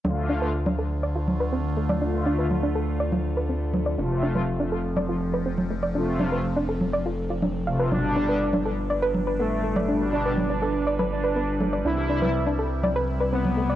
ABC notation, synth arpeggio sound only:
X:1
M:4/4
L:1/16
Q:1/4=122
K:Ddor
V:1 name="Synth arpeggio sound"
D z D B z D A z d F z B C z A, d | D z D B z D A z d F z B C z A, d | D z D B z D A z d F z B C z A, d | D z D B z D A z d F z F D z f B |
D z D B z D A z d B z B B, z A, d | D z D B z D A z d B z B B, z A, d | D z D B z D A z d B z B C z A, d |]